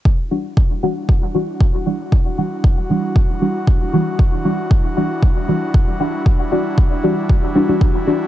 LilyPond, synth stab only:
\new Staff \with { instrumentName = "Synth stab" } { \time 4/4 \key e \minor \tempo 4 = 116 r8 <e g d' fis'>16 r8. <e g d' fis'>4 <e g d' fis'>16 r8. <e g d' fis'>16 r16 | r8 <e g d' fis'>16 r8. <e g d' fis'>4 <e g d' fis'>16 r8. <e g d' fis'>16 r16 | r8 <e g d' fis'>16 r8. <e g d' fis'>4 <e g d' fis'>16 r8. <e g d' fis'>16 r16 | r8 <e g d' fis'>16 r8. <e g d' fis'>4 <e g d' fis'>16 <e g d' fis'>8 r16 <e g d' fis'>8 | }